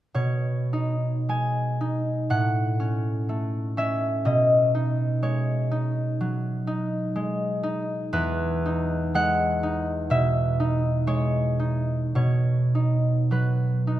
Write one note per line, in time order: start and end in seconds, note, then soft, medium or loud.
0.14 2.33 B2 soft
0.14 4.05 C#5 medium
0.73 1.79 D#4 soft
1.29 2.33 G#3 soft
1.29 2.33 G#5 medium
1.81 2.33 D#4 soft
2.30 4.30 A2 soft
2.30 4.80 F#5 medium
2.80 3.76 C#4 soft
3.29 4.30 A3 soft
3.77 7.67 C#4 soft
3.77 4.30 E5 medium
4.25 8.15 B2 soft
4.25 8.16 D#5 medium
4.75 5.70 D#4 soft
5.22 7.14 G#3 soft
5.22 8.15 C#5 soft
5.71 6.66 D#4 soft
6.21 8.16 F#3 soft
6.67 7.62 D#4 soft
7.16 9.13 G#3 soft
7.63 8.64 D#4 soft
8.13 12.03 E2 medium
8.13 12.03 B4 medium
8.66 9.62 D#4 soft
9.14 11.06 G#3 soft
9.14 10.79 F#5 medium
9.63 10.59 D#4 soft
10.10 12.14 B2 soft
10.10 12.21 E5 medium
10.60 11.58 D#4 soft
11.07 12.20 G#3 soft
11.07 12.15 C#5 medium
11.59 12.74 D#4 soft
12.15 14.00 B2 soft
12.15 14.00 C#5 medium
12.75 13.86 D#4 soft
13.31 14.00 F#3 soft
13.31 14.00 B4 soft
13.87 14.00 D#4 soft